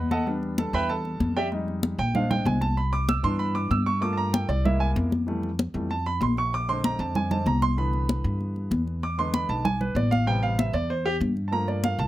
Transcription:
0.00 0.68 E2 medium
0.11 0.27 A4 medium
0.11 0.27 D#5 medium
0.11 0.27 F#5 medium
0.11 0.26 A5 medium
0.11 high conga medium
0.26 1.48 G3 medium
0.26 1.48 B3 soft
0.26 1.49 D4 medium
0.26 high conga soft
0.43 high conga soft
0.58 0.74 A4 medium
0.58 0.74 A5 medium
0.58 high conga medium
0.73 1.17 E2 medium
0.73 0.89 B4 medium
0.73 0.89 E5 medium
0.73 0.89 G5 medium
0.73 0.89 B5 loud
0.73 high conga soft
0.89 1.34 A4 medium
0.89 1.33 A5 medium
0.89 high conga soft
1.05 high conga soft
1.20 1.93 F2 medium
1.20 high conga medium
1.36 1.46 G4 medium
1.36 1.46 D5 medium
1.36 1.46 E5 medium
1.36 1.46 G5 loud
1.36 high conga soft
1.52 1.97 G3 medium
1.52 1.97 G#3 medium
1.52 1.97 D#4 medium
1.52 high conga soft
1.68 high conga soft
1.83 high conga loud
1.98 2.42 A#1 loud
1.98 2.14 G5 loud
1.98 high conga soft
2.14 2.59 G#3 medium
2.14 2.60 C4 medium
2.14 2.60 D4 medium
2.14 2.30 F5 medium
2.14 high conga soft
2.14 low conga medium
2.31 2.46 G5 medium
2.31 high conga soft
2.31 low conga medium
2.45 3.18 C2 medium
2.45 2.61 G#5 medium
2.45 high conga medium
2.61 2.77 A5 loud
2.61 high conga medium
2.77 2.93 B5 medium
2.77 high conga soft
2.93 3.08 D6 loud
2.93 high conga soft
3.09 3.24 E6 loud
3.09 high conga loud
3.23 3.68 G2 loud
3.23 3.68 E3 medium
3.23 3.69 B3 medium
3.23 3.69 D4 medium
3.23 3.39 C6 loud
3.23 high conga soft
3.39 3.55 B5 loud
3.39 high conga soft
3.55 3.70 D6 loud
3.55 high conga soft
3.71 4.44 G2 medium
3.71 3.86 E6 loud
3.71 high conga medium
3.86 4.02 C#6 loud
3.86 high conga soft
4.01 4.46 A3 medium
4.01 4.46 A#3 medium
4.01 4.47 F4 medium
4.01 4.17 D6 loud
4.01 high conga soft
4.13 4.15 A5 medium
4.17 4.33 A#5 medium
4.17 high conga soft
4.34 4.49 G5 medium
4.34 high conga loud
4.49 4.93 C2 loud
4.49 4.64 D5 medium
4.49 high conga soft
4.64 5.09 G#3 medium
4.64 5.10 A#3 medium
4.64 5.10 E4 medium
4.64 4.80 E5 medium
4.64 high conga soft
4.64 low conga medium
4.80 4.90 G#5 medium
4.80 high conga soft
4.96 5.69 F2 loud
4.96 high conga medium
5.12 high conga medium
5.27 5.48 E3 medium
5.27 5.48 G3 medium
5.27 5.49 A3 medium
5.27 high conga soft
5.43 high conga soft
5.59 high conga loud
5.74 6.18 F2 medium
5.74 5.88 E3 soft
5.74 5.89 G3 soft
5.74 5.89 A3 medium
5.74 high conga soft
5.91 6.06 A5 medium
5.91 high conga soft
6.06 6.21 B5 loud
6.06 high conga soft
6.21 6.94 A#1 medium
6.21 6.37 C6 medium
6.21 high conga medium
6.37 6.53 C#6 loud
6.37 high conga soft
6.53 6.69 D6 loud
6.53 high conga soft
6.68 7.29 D3 medium
6.68 7.30 G#3 soft
6.68 7.30 C4 medium
6.68 6.84 C6 loud
6.68 high conga soft
6.84 7.00 A#5 medium
6.84 high conga loud
6.99 7.43 F2 medium
6.99 7.15 A5 medium
6.99 high conga soft
7.15 7.31 G#5 medium
7.15 high conga soft
7.15 low conga medium
7.31 7.45 D3 soft
7.31 7.45 G#3 soft
7.31 7.45 C4 medium
7.31 7.46 A5 loud
7.31 high conga soft
7.31 low conga medium
7.46 8.19 C2 medium
7.46 7.62 A#5 medium
7.46 high conga medium
7.62 7.77 C6 loud
7.62 high conga medium
7.77 8.98 D3 medium
7.77 8.99 E3 medium
7.77 8.99 B3 medium
7.77 8.36 B5 medium
7.77 high conga soft
7.93 high conga soft
8.09 high conga loud
8.24 8.68 G2 medium
8.24 high conga soft
8.41 high conga soft
8.56 high conga soft
8.71 9.44 E2 loud
8.71 high conga medium
8.87 high conga soft
9.03 9.18 D6 loud
9.03 high conga soft
9.18 9.63 D3 medium
9.18 9.63 G#3 medium
9.18 9.63 B3 medium
9.18 9.34 C6 loud
9.18 high conga soft
9.34 9.49 B5 medium
9.34 high conga loud
9.49 9.93 B1 medium
9.49 9.65 A5 loud
9.49 high conga soft
9.65 9.80 G#5 loud
9.65 high conga soft
9.65 low conga medium
9.81 9.96 B4 medium
9.81 high conga soft
9.81 low conga medium
9.95 10.68 A1 loud
9.95 10.11 D5 medium
9.95 high conga medium
10.11 10.27 F5 loud
10.11 high conga medium
10.26 10.72 C3 medium
10.26 10.72 G3 medium
10.26 10.72 B3 medium
10.26 10.43 G5 loud
10.26 high conga soft
10.43 10.58 F5 loud
10.43 high conga soft
10.59 10.74 E5 medium
10.59 high conga loud
10.73 11.18 E2 loud
10.73 10.89 D5 medium
10.73 high conga soft
10.90 11.05 C5 medium
10.90 high conga soft
11.05 11.15 G4 loud
11.05 high conga soft
11.20 11.94 G2 loud
11.20 high conga medium
11.37 high conga soft
11.48 12.08 F3 medium
11.48 12.08 A3 medium
11.48 11.50 A5 medium
11.52 12.08 A#3 medium
11.52 11.68 A#5 medium
11.52 high conga soft
11.68 11.83 D5 medium
11.68 high conga soft
11.84 11.99 F5 medium
11.84 high conga loud
11.99 12.08 C2 loud
11.99 12.08 A5 loud
11.99 high conga soft

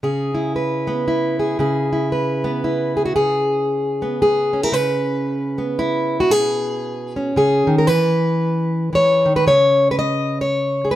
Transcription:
0.03 1.59 C#3 medium
0.03 0.55 G#4 medium
0.35 1.07 E4 soft
0.56 1.39 B4 soft
0.87 1.62 B3 soft
1.08 1.92 E4 medium
1.39 1.60 G#4 soft
1.59 3.15 C#3 medium
1.59 2.12 G#4 medium
1.93 2.63 E4 soft
2.12 2.96 B4 soft
2.44 3.15 B3 soft
2.64 3.15 E4 medium
2.97 3.05 G#4 medium
3.05 3.15 F#4 medium
3.16 4.71 C#3 medium
3.16 4.21 G#4 medium
4.02 4.75 B3 soft
4.22 4.64 G#4 medium
4.53 4.63 C#4 soft
4.63 4.74 E4 soft
4.63 4.74 A#4 medium
4.72 6.28 C#3 medium
4.72 6.20 B4 medium
5.58 7.16 B3 soft
5.79 6.32 E4 medium
6.20 6.31 F#4 medium
6.30 7.36 B2 medium
6.30 7.36 G#4 medium
7.16 7.86 C#4 soft
7.36 7.67 C#3 medium
7.36 7.78 G#4 medium
7.67 7.88 D#3 medium
7.78 7.87 A#4 medium
7.87 8.92 E3 medium
7.87 8.92 B4 medium
8.93 9.25 E3 medium
8.93 9.36 C#5 medium
9.25 9.46 D#3 medium
9.36 9.46 B4 medium
9.47 10.96 C#3 medium
9.47 9.89 C#5 medium
9.91 9.98 B4 medium
9.99 10.40 D#5 medium
10.41 10.91 C#5 medium
10.85 10.96 G#4 soft
10.91 10.96 B4 medium

